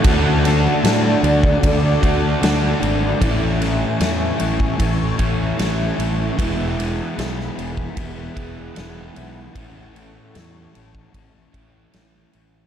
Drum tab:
RD |x-x-x-x-x-x-x-x-|x-x-x-x-x-x-x-x-|x-x-x-x-x-x-x-x-|x-x-x-x-x-x-x-x-|
SD |--o-o-------o---|--o-o-------o---|--o-oo------o---|----o-------o---|
BD |o------oo-o-----|o------oo-o-----|o------oo-o-----|o------oo-o-----|